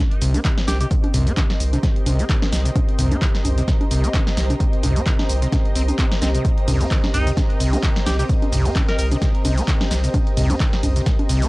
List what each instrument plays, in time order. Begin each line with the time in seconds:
Already playing: analog synth pad C4 G4 A#4 D#5, ambient pad G4 C5
0.11 ambient pad D#5, closed hi-hat
0.22 analog synth bass C2, acid bass C3, open hi-hat, shaker
0.34 acid bass C4, closed hi-hat, high conga, shaker
0.45 acid bass D#3, kick, clap, closed hi-hat, shaker
0.50 ambient pad A#5
0.58 snare, closed hi-hat
0.68 analog synth bass C2, alto saxophone G4, snare, open hi-hat, high conga, shaker
0.81 acid bass C3, alto saxophone G4, closed hi-hat, shaker
0.91 acid bass C3, kick, closed hi-hat, shaker
1.04 closed hi-hat, high conga
1.14 analog synth bass C2, acid bass C3, mid tom, open hi-hat, shaker
1.27 acid bass C4, closed hi-hat, shaker
1.37 acid bass D#3, kick, clap, closed hi-hat, high conga, shaker
1.50 snare, closed hi-hat
1.60 analog synth bass C2, open hi-hat, shaker
1.73 acid bass C3, closed hi-hat, high conga, shaker
1.83 acid bass C3, kick, snare, closed hi-hat, shaker
1.96 closed hi-hat
2.06 analog synth bass C2, acid bass C3, open hi-hat, high conga, shaker
2.19 acid bass C4, closed hi-hat, shaker
2.29 acid bass D#3, kick, clap, closed hi-hat, shaker
2.42 snare, closed hi-hat, high conga
2.53 analog synth bass C2, snare, open hi-hat, shaker
2.65 acid bass C3, closed hi-hat, shaker
2.76 acid bass C3, kick, closed hi-hat, high conga, shaker
2.89 closed hi-hat
2.99 analog synth bass C2, acid bass C3, mid tom, open hi-hat, shaker
3.12 acid bass C4, closed hi-hat, high conga, shaker
3.22 acid bass D#3, kick, clap, closed hi-hat, shaker
3.35 snare, closed hi-hat
3.45 analog synth bass C2, mid tom, open hi-hat, high conga, shaker
3.58 acid bass C3, closed hi-hat, shaker
3.68 acid bass C3, kick, snare, closed hi-hat, shaker
3.81 closed hi-hat, high conga
3.91 analog synth bass C2, acid bass C3, open hi-hat, shaker
4.04 acid bass C4, closed hi-hat, shaker
4.14 acid bass D#3, kick, clap, closed hi-hat, high conga, shaker
4.27 snare, closed hi-hat
4.37 analog synth bass C2, snare, open hi-hat, shaker
4.50 acid bass C3, closed hi-hat, high conga, shaker
4.60 acid bass C3, kick, closed hi-hat, shaker
4.73 closed hi-hat
4.83 analog synth bass C2, acid bass C3, mid tom, open hi-hat, high conga, shaker
4.96 acid bass C4, closed hi-hat, shaker
5.06 acid bass D#3, kick, clap, closed hi-hat, shaker
5.19 snare, closed hi-hat, high conga
5.29 analog synth bass C2, open hi-hat, shaker
5.42 acid bass C3, closed hi-hat, shaker
5.52 acid bass C3, kick, snare, closed hi-hat, high conga, shaker
5.65 closed hi-hat
5.76 analog synth bass C2, acid bass C4, open hi-hat, shaker
5.88 closed hi-hat, high conga, shaker
5.99 acid bass C4, kick, clap, closed hi-hat, shaker
6.12 snare, closed hi-hat
6.22 analog synth bass C2, acid bass C4, snare, open hi-hat, high conga, shaker
6.35 acid bass C3, closed hi-hat, shaker
6.45 acid bass C3, analog synth pad G5, kick, closed hi-hat, shaker
6.58 closed hi-hat
6.68 analog synth bass C2, acid bass C3, mid tom, open hi-hat, ride, high conga, shaker
6.81 acid bass C4, closed hi-hat, shaker
6.91 acid bass D#3, kick, clap, closed hi-hat, shaker
7.04 snare, closed hi-hat, high conga
7.14 analog synth bass C2, alto saxophone D#4, mid tom, open hi-hat, ride, shaker
7.27 acid bass C3, closed hi-hat, shaker
7.37 acid bass C3, kick, snare, closed hi-hat, high conga, shaker
7.50 closed hi-hat
7.60 analog synth bass C2, acid bass C3, open hi-hat, ride, shaker
7.73 acid bass C4, closed hi-hat, high conga, shaker
7.83 acid bass D#3, kick, clap, closed hi-hat, shaker
7.96 snare, closed hi-hat
8.06 analog synth bass C2, alto saxophone G4, snare, open hi-hat, ride, high conga, shaker
8.19 acid bass C3, alto saxophone G4, closed hi-hat, shaker
8.29 acid bass C3, kick, closed hi-hat, shaker
8.42 closed hi-hat, high conga
8.52 analog synth bass C2, acid bass C3, mid tom, open hi-hat, ride, shaker
8.65 acid bass C4, closed hi-hat, shaker
8.76 acid bass D#3, kick, clap, closed hi-hat, high conga, shaker
8.89 alto saxophone A#4, snare, closed hi-hat
8.99 analog synth bass C2, alto saxophone A#4, open hi-hat, ride, shaker
9.12 acid bass C3, closed hi-hat, high conga, shaker
9.22 acid bass C3, kick, snare, closed hi-hat, shaker
9.35 closed hi-hat
9.45 analog synth bass C2, acid bass C3, open hi-hat, ride, high conga, shaker
9.58 acid bass C4, closed hi-hat, shaker
9.68 acid bass D#3, kick, clap, closed hi-hat, shaker
9.81 snare, closed hi-hat, high conga
9.91 analog synth bass C2, snare, open hi-hat, ride, shaker
10.04 acid bass C3, closed hi-hat, shaker
10.14 acid bass C3, kick, closed hi-hat, high conga, shaker
10.27 closed hi-hat
10.37 analog synth bass C2, acid bass C3, mid tom, open hi-hat, ride, shaker
10.50 acid bass C4, closed hi-hat, high conga, shaker
10.60 acid bass D#3, kick, clap, closed hi-hat, shaker
10.73 snare, closed hi-hat
10.83 analog synth bass C2, mid tom, open hi-hat, ride, high conga, shaker
10.96 acid bass C3, closed hi-hat, shaker
11.06 acid bass C3, kick, snare, closed hi-hat, shaker
11.19 closed hi-hat, high conga
11.29 analog synth bass C2, acid bass C3, open hi-hat, ride, shaker
11.42 acid bass C4, closed hi-hat, shaker